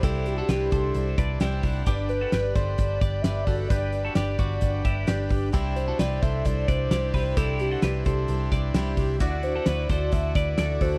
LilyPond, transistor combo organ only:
\new Staff \with { instrumentName = "Transistor combo organ" } { \time 4/4 \key c \lydian \tempo 4 = 131 << { r2 r8 a''8 g''8 fis''8 | r1 | r1 | r1 |
r1 | r1 | } \\ { <d' e' c''>1 | <d' g' b'>1~ | <d' g' b'>1 | <d' e' c''>1~ |
<d' e' c''>1 | <e' fis' d''>1 | } >> }